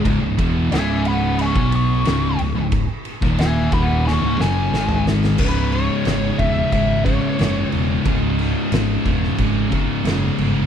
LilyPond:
<<
  \new Staff \with { instrumentName = "Lead electric guitar" } { \time 4/4 \key cis \minor \tempo 4 = 90 r4 <e'' gis''>8 <fis'' b''>8 <gis'' cis'''>8 cis'''4 r8 | r4 <e'' gis''>8 <fis'' b''>8 <gis'' cis'''>8 gis''4 r8 | b'8 cis''4 e''8 e''8 cis''4 r8 | r1 | }
  \new Staff \with { instrumentName = "Distorted electric guitar" } { \clef bass \time 4/4 \key cis \minor <cis, gis,>16 <cis, gis,>16 <e, b, e>8 <cis, gis, cis>4~ <cis, gis, cis>16 <b, fis b>8. <cis, gis, cis>8 <cis, gis,>16 <cis, gis,>16~ | <cis, gis,>16 r8 <dis, ais, dis>8. <dis, ais, dis>8. <cis, gis,>16 <fis, cis fis>8 <gis, dis gis>4 | <cis, gis, cis>2.~ <cis, gis, cis>8 <cis, gis, cis>8 | <cis, gis, cis>2.~ <cis, gis, cis>8 <cis, gis, cis>8 | }
  \new Staff \with { instrumentName = "Distorted electric guitar" } { \clef bass \time 4/4 \key cis \minor <cis, gis,>16 <cis, gis,>16 <e, b, e>8 <cis, gis, cis>4~ <cis, gis, cis>16 <b, fis b>8. <cis, gis, cis>8 <cis, gis,>16 <cis, gis,>16~ | <cis, gis,>16 r8 <dis, ais, dis>8. <dis, ais, dis>8. <cis, gis,>16 <fis, cis fis>8 <gis, dis gis>4 | <cis, gis, cis>2~ <cis, gis, cis>8 <cis, gis, cis>8 <cis, gis, cis>4 | <cis, gis, cis>2~ <cis, gis, cis>8 <cis, gis, cis>8 <cis, gis, cis>4 | }
  \new Staff \with { instrumentName = "Distorted electric guitar" } { \clef bass \time 4/4 \key cis \minor <cis, gis,>16 <cis, gis,>16 <e, b, e>8 <cis, gis, cis>4~ <cis, gis, cis>16 <b, fis b>8. <cis, gis, cis>8 <cis, gis,>16 <cis, gis,>16~ | <cis, gis,>16 r8 <dis, ais, dis>8. <dis, ais, dis>8. <cis, gis,>16 <fis, cis fis>8 <gis, dis gis>4 | <cis, gis, cis>8 <cis, gis, cis>8 <cis, gis, cis>8 <cis, gis, cis>8 <cis, gis, cis>8 <cis, gis, cis>8 <cis, gis, cis>8 <cis, gis, cis>8 | <cis, gis, cis>8 <cis, gis, cis>8 <cis, gis, cis>8 <cis, gis, cis>8 <cis, gis, cis>8 <cis, gis, cis>8 <cis, gis, cis>8 <cis, gis, cis>8 | }
  \new Staff \with { instrumentName = "Fingered electric bass" } { \clef bass \time 4/4 \key cis \minor cis,,16 cis,,16 e,,8 cis,,4~ cis,,16 b,,8. cis,,8 cis,,16 cis,,16~ | cis,,16 r8 dis,,8. dis,,8. cis,,16 fis,,8 gis,,4 | cis,,4 gis,,8 e,,8 gis,,4 fis,,8 e,,8 | cis,,4 gis,,8 e,,8 gis,,4 fis,,8 g,,8 | }
  \new DrumStaff \with { instrumentName = "Drums" } \drummode { \time 4/4 <bd cymr>8 <bd cymr>8 <cymr sn>8 cymr8 cymr16 bd16 cymr8 <cymr sn>8 cymr8 | <bd cymr>8 cymr16 <bd sn>16 <cymr sn>8 <bd cymr>8 sn8 sn8 sn16 toml16 sn16 sn16 | <cymc bd>8 cymc8 <cymc sn>8 <cymc bd>8 <cymc bd>8 <cymc bd>8 <cymc sn>8 cymc8 | <cymc bd>8 <cymc sn>8 <cymc sn>8 <cymc bd>16 sn16 <cymc bd>8 <cymc bd>8 <cymc sn>8 cymc8 | }
>>